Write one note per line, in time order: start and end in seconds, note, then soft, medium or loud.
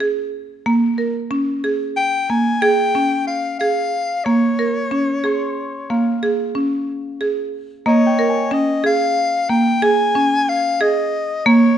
0.00 0.38 G#4 medium
0.66 0.85 A#3 medium
0.98 1.17 A#4 medium
1.31 1.49 C#4 medium
1.64 2.01 G#4 medium
1.97 2.32 G5 medium
2.30 2.48 A#3 medium
2.30 2.63 G#5 medium
2.62 2.81 G#4 medium
2.62 3.27 G5 loud
2.95 3.32 C#4 medium
3.27 3.58 F5 medium
3.60 3.98 G#4 medium
3.60 4.26 F5 medium
4.25 4.45 A#3 medium
4.25 6.22 C#5 medium
4.59 4.78 A#4 medium
4.91 5.10 C#4 medium
5.24 5.61 G#4 medium
5.24 6.66 C6 medium
5.24 6.66 C#6 soft
5.90 6.09 A#3 medium
5.90 7.56 F5 soft
6.23 6.41 G#4 medium
6.55 6.92 C#4 medium
7.21 7.58 G#4 medium
7.86 8.05 A#3 medium
7.86 8.55 C#5 medium
7.86 9.65 D#5 medium
8.06 9.62 G5 soft
8.19 8.38 A#4 medium
8.29 9.79 G#5 soft
8.51 8.70 C#4 medium
8.51 8.85 D#5 medium
8.84 9.21 G#4 medium
8.84 9.51 F5 medium
9.49 9.68 A#3 medium
9.49 9.84 G5 medium
9.82 10.01 G#4 medium
9.82 10.51 G#5 loud
10.15 10.53 C#4 medium
10.49 10.84 F5 medium
10.81 11.18 G#4 medium
10.81 11.48 D#5 medium
11.46 11.65 A#3 medium
11.46 11.78 C#5 medium